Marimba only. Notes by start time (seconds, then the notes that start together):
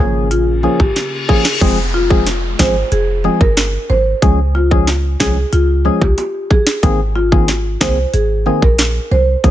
0.00 G#4
0.31 F4
0.80 G4
1.29 G#4
1.94 F4
2.59 C5
2.92 G#4
3.41 A#4
3.90 C5
4.55 F4
5.20 G#4
5.53 F4
6.02 G4
6.50 G#4
7.16 F4
7.81 C5
8.14 G#4
8.62 A#4
9.11 C5